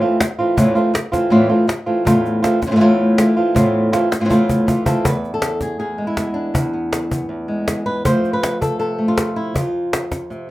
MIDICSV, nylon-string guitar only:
0, 0, Header, 1, 3, 480
1, 0, Start_track
1, 0, Tempo, 373832
1, 746, Time_signature, 4, 2, 24, 8
1, 13487, End_track
2, 0, Start_track
2, 0, Title_t, "Nylon-string guitar"
2, 0, Program_c, 0, 24
2, 17, Note_on_c, 0, 65, 50
2, 28, Note_on_c, 0, 60, 53
2, 37, Note_on_c, 0, 57, 41
2, 42, Note_on_c, 0, 52, 43
2, 246, Note_off_c, 0, 65, 0
2, 249, Note_off_c, 0, 52, 0
2, 250, Note_off_c, 0, 60, 0
2, 251, Note_off_c, 0, 57, 0
2, 495, Note_on_c, 0, 65, 50
2, 505, Note_on_c, 0, 60, 48
2, 517, Note_on_c, 0, 57, 37
2, 518, Note_on_c, 0, 52, 43
2, 725, Note_off_c, 0, 52, 0
2, 729, Note_off_c, 0, 57, 0
2, 729, Note_off_c, 0, 60, 0
2, 729, Note_on_c, 0, 40, 68
2, 731, Note_off_c, 0, 65, 0
2, 734, Note_on_c, 0, 45, 77
2, 741, Note_on_c, 0, 52, 81
2, 744, Note_on_c, 0, 60, 72
2, 745, Note_on_c, 0, 57, 85
2, 748, Note_on_c, 0, 65, 81
2, 949, Note_off_c, 0, 65, 0
2, 955, Note_off_c, 0, 60, 0
2, 964, Note_on_c, 0, 65, 57
2, 967, Note_off_c, 0, 40, 0
2, 967, Note_off_c, 0, 57, 0
2, 969, Note_off_c, 0, 45, 0
2, 969, Note_off_c, 0, 52, 0
2, 971, Note_on_c, 0, 60, 52
2, 982, Note_on_c, 0, 57, 46
2, 984, Note_on_c, 0, 52, 43
2, 1189, Note_off_c, 0, 52, 0
2, 1191, Note_off_c, 0, 57, 0
2, 1193, Note_off_c, 0, 60, 0
2, 1197, Note_off_c, 0, 65, 0
2, 1436, Note_on_c, 0, 65, 52
2, 1443, Note_on_c, 0, 60, 52
2, 1456, Note_on_c, 0, 57, 43
2, 1457, Note_on_c, 0, 52, 46
2, 1665, Note_off_c, 0, 52, 0
2, 1667, Note_off_c, 0, 57, 0
2, 1672, Note_on_c, 0, 45, 80
2, 1675, Note_off_c, 0, 65, 0
2, 1675, Note_on_c, 0, 40, 67
2, 1676, Note_off_c, 0, 60, 0
2, 1680, Note_on_c, 0, 52, 81
2, 1683, Note_on_c, 0, 57, 82
2, 1690, Note_on_c, 0, 65, 86
2, 1691, Note_on_c, 0, 60, 90
2, 1901, Note_off_c, 0, 65, 0
2, 1904, Note_off_c, 0, 60, 0
2, 1916, Note_off_c, 0, 45, 0
2, 1916, Note_off_c, 0, 57, 0
2, 1917, Note_off_c, 0, 40, 0
2, 1917, Note_on_c, 0, 65, 50
2, 1919, Note_on_c, 0, 60, 47
2, 1920, Note_off_c, 0, 52, 0
2, 1932, Note_on_c, 0, 57, 43
2, 1939, Note_on_c, 0, 52, 41
2, 2144, Note_off_c, 0, 57, 0
2, 2145, Note_off_c, 0, 52, 0
2, 2147, Note_off_c, 0, 65, 0
2, 2149, Note_off_c, 0, 60, 0
2, 2392, Note_on_c, 0, 65, 47
2, 2396, Note_on_c, 0, 60, 52
2, 2401, Note_on_c, 0, 57, 44
2, 2404, Note_on_c, 0, 52, 40
2, 2631, Note_off_c, 0, 57, 0
2, 2632, Note_off_c, 0, 60, 0
2, 2633, Note_on_c, 0, 40, 68
2, 2634, Note_off_c, 0, 65, 0
2, 2634, Note_on_c, 0, 45, 69
2, 2640, Note_off_c, 0, 52, 0
2, 2647, Note_on_c, 0, 57, 83
2, 2648, Note_on_c, 0, 60, 76
2, 2656, Note_on_c, 0, 65, 77
2, 3098, Note_off_c, 0, 65, 0
2, 3112, Note_off_c, 0, 60, 0
2, 3113, Note_on_c, 0, 65, 52
2, 3114, Note_off_c, 0, 40, 0
2, 3114, Note_off_c, 0, 45, 0
2, 3117, Note_off_c, 0, 57, 0
2, 3128, Note_on_c, 0, 60, 52
2, 3132, Note_on_c, 0, 57, 48
2, 3137, Note_on_c, 0, 52, 44
2, 3349, Note_off_c, 0, 52, 0
2, 3350, Note_off_c, 0, 57, 0
2, 3351, Note_off_c, 0, 60, 0
2, 3354, Note_off_c, 0, 65, 0
2, 3422, Note_on_c, 0, 45, 52
2, 3426, Note_on_c, 0, 52, 53
2, 3429, Note_on_c, 0, 57, 52
2, 3432, Note_on_c, 0, 60, 56
2, 3439, Note_on_c, 0, 65, 55
2, 3465, Note_off_c, 0, 45, 0
2, 3470, Note_off_c, 0, 52, 0
2, 3475, Note_off_c, 0, 60, 0
2, 3477, Note_off_c, 0, 57, 0
2, 3477, Note_off_c, 0, 65, 0
2, 3481, Note_on_c, 0, 45, 67
2, 3485, Note_on_c, 0, 52, 60
2, 3490, Note_on_c, 0, 60, 68
2, 3492, Note_on_c, 0, 57, 65
2, 3493, Note_on_c, 0, 65, 68
2, 3525, Note_off_c, 0, 45, 0
2, 3526, Note_off_c, 0, 52, 0
2, 3530, Note_off_c, 0, 57, 0
2, 3530, Note_off_c, 0, 60, 0
2, 3540, Note_on_c, 0, 45, 67
2, 3541, Note_off_c, 0, 65, 0
2, 3541, Note_on_c, 0, 52, 71
2, 3545, Note_on_c, 0, 57, 82
2, 3546, Note_on_c, 0, 60, 71
2, 3556, Note_on_c, 0, 65, 72
2, 3588, Note_off_c, 0, 45, 0
2, 3591, Note_off_c, 0, 57, 0
2, 3595, Note_off_c, 0, 65, 0
2, 3596, Note_off_c, 0, 60, 0
2, 3596, Note_on_c, 0, 40, 72
2, 3604, Note_on_c, 0, 45, 73
2, 3606, Note_on_c, 0, 57, 86
2, 3611, Note_on_c, 0, 60, 82
2, 3611, Note_on_c, 0, 65, 95
2, 3635, Note_off_c, 0, 52, 0
2, 4073, Note_off_c, 0, 57, 0
2, 4074, Note_off_c, 0, 40, 0
2, 4077, Note_off_c, 0, 45, 0
2, 4080, Note_on_c, 0, 52, 54
2, 4081, Note_off_c, 0, 60, 0
2, 4081, Note_off_c, 0, 65, 0
2, 4088, Note_on_c, 0, 57, 60
2, 4100, Note_on_c, 0, 60, 56
2, 4106, Note_on_c, 0, 65, 60
2, 4307, Note_off_c, 0, 65, 0
2, 4315, Note_off_c, 0, 52, 0
2, 4315, Note_off_c, 0, 60, 0
2, 4320, Note_off_c, 0, 57, 0
2, 4323, Note_on_c, 0, 65, 52
2, 4331, Note_on_c, 0, 60, 44
2, 4338, Note_on_c, 0, 57, 42
2, 4347, Note_on_c, 0, 52, 45
2, 4554, Note_off_c, 0, 57, 0
2, 4554, Note_on_c, 0, 40, 70
2, 4554, Note_on_c, 0, 45, 78
2, 4556, Note_off_c, 0, 60, 0
2, 4557, Note_off_c, 0, 65, 0
2, 4569, Note_off_c, 0, 52, 0
2, 4569, Note_on_c, 0, 57, 76
2, 4571, Note_on_c, 0, 60, 70
2, 4574, Note_on_c, 0, 65, 84
2, 5023, Note_off_c, 0, 65, 0
2, 5031, Note_off_c, 0, 40, 0
2, 5031, Note_off_c, 0, 45, 0
2, 5034, Note_off_c, 0, 60, 0
2, 5038, Note_on_c, 0, 65, 55
2, 5039, Note_off_c, 0, 57, 0
2, 5049, Note_on_c, 0, 60, 49
2, 5057, Note_on_c, 0, 57, 43
2, 5062, Note_on_c, 0, 52, 43
2, 5269, Note_off_c, 0, 52, 0
2, 5274, Note_off_c, 0, 57, 0
2, 5274, Note_off_c, 0, 60, 0
2, 5274, Note_off_c, 0, 65, 0
2, 5397, Note_on_c, 0, 45, 49
2, 5405, Note_on_c, 0, 52, 50
2, 5407, Note_on_c, 0, 57, 49
2, 5408, Note_on_c, 0, 60, 57
2, 5410, Note_on_c, 0, 65, 59
2, 5439, Note_off_c, 0, 45, 0
2, 5447, Note_off_c, 0, 57, 0
2, 5449, Note_off_c, 0, 60, 0
2, 5450, Note_off_c, 0, 52, 0
2, 5454, Note_off_c, 0, 65, 0
2, 5454, Note_on_c, 0, 45, 65
2, 5462, Note_on_c, 0, 57, 62
2, 5465, Note_on_c, 0, 52, 67
2, 5465, Note_on_c, 0, 60, 73
2, 5470, Note_on_c, 0, 65, 73
2, 5502, Note_off_c, 0, 45, 0
2, 5507, Note_off_c, 0, 57, 0
2, 5510, Note_off_c, 0, 60, 0
2, 5513, Note_off_c, 0, 65, 0
2, 5514, Note_on_c, 0, 40, 77
2, 5517, Note_on_c, 0, 45, 75
2, 5522, Note_on_c, 0, 57, 88
2, 5525, Note_on_c, 0, 60, 84
2, 5529, Note_on_c, 0, 65, 84
2, 5554, Note_off_c, 0, 52, 0
2, 5987, Note_off_c, 0, 57, 0
2, 5991, Note_off_c, 0, 40, 0
2, 5993, Note_off_c, 0, 45, 0
2, 5993, Note_on_c, 0, 52, 51
2, 5997, Note_off_c, 0, 60, 0
2, 5998, Note_off_c, 0, 65, 0
2, 6002, Note_on_c, 0, 57, 55
2, 6010, Note_on_c, 0, 60, 53
2, 6013, Note_on_c, 0, 65, 54
2, 6216, Note_off_c, 0, 65, 0
2, 6228, Note_off_c, 0, 60, 0
2, 6231, Note_off_c, 0, 52, 0
2, 6231, Note_on_c, 0, 65, 46
2, 6235, Note_off_c, 0, 57, 0
2, 6244, Note_on_c, 0, 60, 44
2, 6249, Note_on_c, 0, 57, 44
2, 6253, Note_on_c, 0, 69, 78
2, 6260, Note_on_c, 0, 52, 41
2, 6470, Note_off_c, 0, 65, 0
2, 6476, Note_off_c, 0, 60, 0
2, 6479, Note_off_c, 0, 57, 0
2, 6479, Note_on_c, 0, 40, 65
2, 6484, Note_off_c, 0, 52, 0
2, 6490, Note_off_c, 0, 69, 0
2, 6490, Note_on_c, 0, 71, 79
2, 6849, Note_off_c, 0, 71, 0
2, 6854, Note_on_c, 0, 69, 77
2, 7211, Note_off_c, 0, 69, 0
2, 7220, Note_on_c, 0, 68, 65
2, 7428, Note_off_c, 0, 68, 0
2, 7432, Note_off_c, 0, 40, 0
2, 7437, Note_on_c, 0, 40, 53
2, 7443, Note_on_c, 0, 68, 70
2, 7679, Note_on_c, 0, 56, 53
2, 7789, Note_off_c, 0, 68, 0
2, 7794, Note_on_c, 0, 64, 66
2, 7923, Note_on_c, 0, 59, 39
2, 8139, Note_on_c, 0, 62, 67
2, 8377, Note_off_c, 0, 56, 0
2, 8378, Note_off_c, 0, 64, 0
2, 8379, Note_off_c, 0, 59, 0
2, 8382, Note_off_c, 0, 40, 0
2, 8396, Note_on_c, 0, 40, 73
2, 8397, Note_on_c, 0, 64, 75
2, 8647, Note_on_c, 0, 59, 41
2, 8877, Note_off_c, 0, 62, 0
2, 8898, Note_on_c, 0, 62, 41
2, 9110, Note_off_c, 0, 59, 0
2, 9125, Note_on_c, 0, 59, 40
2, 9344, Note_off_c, 0, 40, 0
2, 9360, Note_on_c, 0, 40, 55
2, 9607, Note_on_c, 0, 56, 53
2, 10086, Note_off_c, 0, 64, 0
2, 10091, Note_on_c, 0, 71, 90
2, 10304, Note_off_c, 0, 59, 0
2, 10305, Note_off_c, 0, 56, 0
2, 10311, Note_off_c, 0, 62, 0
2, 10330, Note_off_c, 0, 40, 0
2, 10334, Note_on_c, 0, 53, 70
2, 10335, Note_off_c, 0, 71, 0
2, 10342, Note_on_c, 0, 57, 44
2, 10350, Note_on_c, 0, 60, 49
2, 10351, Note_on_c, 0, 72, 92
2, 10573, Note_off_c, 0, 60, 0
2, 10579, Note_on_c, 0, 60, 41
2, 10694, Note_off_c, 0, 72, 0
2, 10699, Note_on_c, 0, 71, 87
2, 11056, Note_off_c, 0, 71, 0
2, 11061, Note_on_c, 0, 69, 76
2, 11275, Note_off_c, 0, 69, 0
2, 11288, Note_on_c, 0, 48, 55
2, 11293, Note_on_c, 0, 69, 79
2, 11520, Note_off_c, 0, 57, 0
2, 11535, Note_on_c, 0, 57, 52
2, 11660, Note_on_c, 0, 65, 73
2, 12016, Note_off_c, 0, 69, 0
2, 12021, Note_on_c, 0, 64, 78
2, 12231, Note_off_c, 0, 48, 0
2, 12233, Note_off_c, 0, 57, 0
2, 12235, Note_off_c, 0, 53, 0
2, 12237, Note_off_c, 0, 60, 0
2, 12254, Note_on_c, 0, 41, 68
2, 12257, Note_off_c, 0, 65, 0
2, 12272, Note_off_c, 0, 64, 0
2, 12272, Note_on_c, 0, 65, 84
2, 13229, Note_on_c, 0, 48, 49
2, 13471, Note_off_c, 0, 48, 0
2, 13487, Note_off_c, 0, 41, 0
2, 13487, Note_off_c, 0, 65, 0
2, 13487, End_track
3, 0, Start_track
3, 0, Title_t, "Muted nylon-string guitar strokes"
3, 256, Note_on_c, 9, 29, 61
3, 384, Note_off_c, 9, 29, 0
3, 1201, Note_on_c, 9, 29, 66
3, 1330, Note_off_c, 9, 29, 0
3, 2150, Note_on_c, 9, 29, 63
3, 2278, Note_off_c, 9, 29, 0
3, 3359, Note_on_c, 9, 29, 66
3, 3488, Note_off_c, 9, 29, 0
3, 5281, Note_on_c, 9, 29, 59
3, 5409, Note_off_c, 9, 29, 0
3, 13487, End_track
0, 0, End_of_file